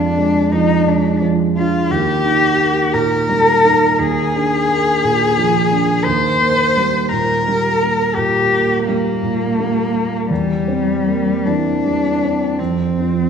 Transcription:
Already playing: grand piano F2 F3 G#3 D4, cello D4
0.18 grand piano G#3
0.52 grand piano F3, cello D#4
0.87 grand piano G#3, cello D4
1.22 grand piano F3
1.56 grand piano D4, cello F4
1.91 grand piano D#2, cello G4
2.24 grand piano D#4
2.58 grand piano A#3
2.94 grand piano A#2, cello A#4
3.29 grand piano G3
3.64 grand piano D#4
3.98 grand piano D#2, cello G#4
4.34 grand piano D4
4.69 grand piano A#3
5.04 grand piano A#2
5.38 grand piano F3
5.71 grand piano D4
6.04 grand piano D#2, cello C5
6.41 grand piano A#3
6.77 grand piano G3
7.09 grand piano A#2, cello A#4
7.48 grand piano G3
7.83 grand piano A#3
8.15 grand piano A#2, cello G4
8.52 grand piano A#3
8.87 grand piano G3, cello A#3
9.23 grand piano A#2
9.60 grand piano G3
9.94 grand piano A#3
10.30 grand piano E2, cello G3
10.68 grand piano C4
11.07 grand piano A#3
11.46 grand piano E3, cello D4
11.85 grand piano G3
12.24 grand piano C4
12.59 grand piano F2, cello C4
13.00 grand piano F3

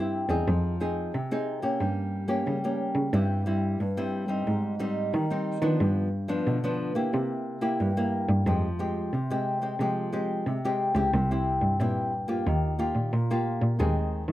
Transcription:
Already playing: cello G2, nylon-string guitar G2
0.00 nylon-string guitar C4 E4 G4
0.29 cello E2, nylon-string guitar C4 D#4 G#4
0.48 cello F2, nylon-string guitar F3
0.80 nylon-string guitar C4 D#4 G#4
1.14 nylon-string guitar C3, cello C3
1.31 nylon-string guitar C4 D#4 G#4
1.62 nylon-string guitar A#3 C#4 G4
1.80 cello G2, nylon-string guitar G3
2.28 nylon-string guitar A#3 C#4 G4
2.46 cello C#3, nylon-string guitar G3
2.64 nylon-string guitar A#3 C#4 G4
2.95 cello C#3
3.13 nylon-string guitar G2 G3 C4 E4, cello G2
3.46 nylon-string guitar G3 C4 E4
3.80 nylon-string guitar G2, cello G2
3.97 nylon-string guitar G3 C4 E4
4.28 nylon-string guitar G3 C4 D#4
4.47 nylon-string guitar G#2, cello G#2
4.79 nylon-string guitar G3 C4 D#4
5.13 nylon-string guitar D#3, cello D#3
5.30 nylon-string guitar G3 C4 D#4
5.62 cello D#3, nylon-string guitar F3 B3 D4
5.80 nylon-string guitar G2, cello G2
6.28 nylon-string guitar F3 B3 D4
6.47 cello B2, nylon-string guitar D3
6.64 nylon-string guitar F3 B3 D4
6.95 nylon-string guitar A#3 E4 G4
7.13 nylon-string guitar C3, cello C3
7.61 nylon-string guitar A#3 E4 G4
7.80 nylon-string guitar G2, cello G2
7.97 nylon-string guitar A#3 E4 G4
8.29 cello G2
8.46 cello F2, nylon-string guitar F3 G#3 C4 G4
8.79 nylon-string guitar G#3 C4 G4
9.13 cello C3, nylon-string guitar C3
9.30 nylon-string guitar G#3 C4 G4
9.61 nylon-string guitar G#3 C4 G4
9.80 cello C3, nylon-string guitar F3 G#3 C4 G4
10.12 nylon-string guitar G#3 C4 G4
10.46 cello C3, nylon-string guitar C3
10.65 nylon-string guitar G#3 C4 G4
10.95 cello C#2, nylon-string guitar C4 E4 G4
11.14 cello C2, nylon-string guitar C3
11.31 nylon-string guitar C4 E4 G4
11.61 cello G2
11.80 nylon-string guitar G2 C4 E4 G4, cello A#2
12.28 nylon-string guitar A#3 F4 G4
12.46 cello D#2, nylon-string guitar D#3
12.79 nylon-string guitar A#3 F4 G4
12.95 cello A#2
13.13 cello A#2, nylon-string guitar A#2
13.30 nylon-string guitar A#3 F4 G4
13.61 cello A#2
13.79 cello D#2, nylon-string guitar D#3 G#3 C4 G#4
14.28 cello D#3

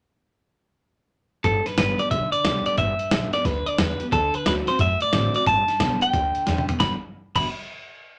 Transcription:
1.44 upright bass G1, steel-string acoustic guitar G2, clean electric guitar A4, kick, closed hi-hat
1.66 clean electric guitar B4, snare, closed hi-hat
1.77 upright bass G1, steel-string acoustic guitar D3 G3 B3 G4, clean electric guitar B4, snare, closed hi-hat
1.99 steel-string acoustic guitar B3 G4, clean electric guitar D5, closed hi-hat
2.11 upright bass B1, steel-string acoustic guitar D3, clean electric guitar E5, kick, closed hi-hat
2.32 clean electric guitar D5, muted upright bass stroke, closed hi-hat
2.44 upright bass C2, steel-string acoustic guitar D3 G3 B3 G4, snare, closed hi-hat
2.66 clean electric guitar D5, muted upright bass stroke, closed hi-hat
2.77 upright bass G1, steel-string acoustic guitar G2, clean electric guitar E5, kick, closed hi-hat
2.99 muted upright bass stroke, closed hi-hat
3.11 upright bass B1, steel-string acoustic guitar D3 G3 B3 G4, snare, closed hi-hat
3.33 steel-string acoustic guitar B3 G4, clean electric guitar D5, muted upright bass stroke, snare, closed hi-hat
3.45 upright bass D2, steel-string acoustic guitar D3, clean electric guitar B4, kick, snare, closed hi-hat
3.66 clean electric guitar D5, muted upright bass stroke, closed hi-hat
3.78 upright bass E2, steel-string acoustic guitar D3 G3 B3 G4, clean electric guitar B4, snare, closed hi-hat
4.00 steel-string acoustic guitar B3 G4, muted upright bass stroke, closed hi-hat
4.12 upright bass D2, steel-string acoustic guitar D3, clean electric guitar A4, kick, closed hi-hat
4.34 clean electric guitar B4, muted upright bass stroke, closed hi-hat
4.45 upright bass D2, steel-string acoustic guitar D3 A3 C4 F#4, clean electric guitar B4, snare, closed hi-hat
4.66 steel-string acoustic guitar C4 F#4, clean electric guitar C5, muted upright bass stroke, snare, closed hi-hat
4.78 upright bass F#2, steel-string acoustic guitar A2, clean electric guitar E5, kick, closed hi-hat
5.00 clean electric guitar D5, closed hi-hat
5.12 upright bass A1, steel-string acoustic guitar D3 A3 C4 F#4, snare, closed hi-hat
5.34 steel-string acoustic guitar C4 F#4, clean electric guitar D5, muted upright bass stroke, closed hi-hat
5.46 upright bass G1, steel-string acoustic guitar G2, clean electric guitar A5, kick, closed hi-hat
5.68 muted upright bass stroke, snare, closed hi-hat
5.80 upright bass B1, steel-string acoustic guitar D3 G3 B3 G4, kick, snare, closed hi-hat
6.01 steel-string acoustic guitar B3 G4, clean electric guitar G5, muted upright bass stroke, closed hi-hat
6.13 upright bass D2, steel-string acoustic guitar D3, kick, closed hi-hat
6.35 muted upright bass stroke, closed hi-hat
6.46 upright bass E2, steel-string acoustic guitar D3 G3 B3 G4, snare, closed hi-hat
6.58 mid tom
6.68 steel-string acoustic guitar B3 G4, muted upright bass stroke, closed hi-hat, floor tom
6.80 upright bass G1, steel-string acoustic guitar G2 B2 D3 G3 B3 G4, clean electric guitar B5, kick, snare
7.35 upright bass G1, steel-string acoustic guitar G2 B2 D3 G3 B3 G4, clean electric guitar B5, kick, crash

